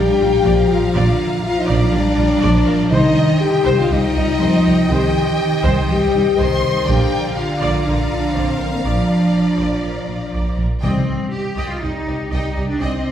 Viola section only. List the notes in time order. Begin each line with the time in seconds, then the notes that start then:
0.20 F4
0.45 D5
0.69 A#4
0.94 D5
1.67 D5
1.92 A#4
2.17 F4
2.41 D5
2.67 A#4
2.92 C5 D#5
3.65 C5
3.91 G4
4.16 D#4
4.41 C5
4.66 G4
4.92 C5
5.64 C5
5.90 G4
6.15 D#4
6.38 C5
6.63 G4
6.87 D5
7.62 D5
7.87 A#4
8.11 F4
8.35 D5
8.59 A#4
8.84 D5
9.58 D5
9.84 A#4
10.08 F4
10.33 D5
10.59 A#4
10.84 D5 D#5
11.57 D5 D#5
11.82 D5 D#5
12.08 D5 D#5
12.32 D5 D#5
12.56 D5 D#5
12.80 D5 D#5